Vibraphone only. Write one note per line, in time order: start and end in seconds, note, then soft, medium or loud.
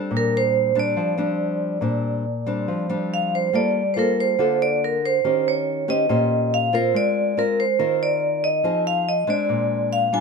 0.17 0.34 A#4 medium
0.37 0.75 C5 medium
0.80 3.08 D5 medium
3.14 3.34 F5 medium
3.35 3.55 C5 medium
3.55 3.92 D5 medium
3.94 3.97 C5 medium
3.99 4.17 A#4 medium
4.20 4.62 C5 medium
4.62 4.82 D5 medium
4.84 5.04 A#4 medium
5.06 5.47 C5 medium
5.48 5.90 C#5 medium
5.90 6.54 D#5 medium
6.54 6.74 F5 loud
6.75 6.95 C5 medium
6.96 7.38 D5 loud
7.39 7.59 A#4 medium
7.60 8.02 C5 medium
8.03 8.45 D5 loud
8.44 8.82 D#5 loud
8.87 9.07 F5 medium
9.09 9.29 D#5 medium
9.30 9.94 D5 medium
9.93 10.11 F5 loud
10.14 10.20 G#5 medium